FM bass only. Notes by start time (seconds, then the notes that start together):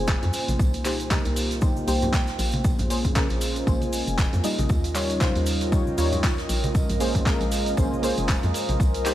Already playing: F1
0.23 F2
0.48 A#1
0.59 C2
1.25 C2
1.87 C2
2.39 A#1
2.79 A#1
3.30 A#1
3.67 A#1
4.07 F1
4.33 F2
4.59 A#1
4.70 D#2
5.36 D#2
5.98 D#2
6.49 A#1
6.89 A#1
7.41 A#1
7.77 A#1
8.18 F1
8.43 F2
8.69 A#1
8.80 C2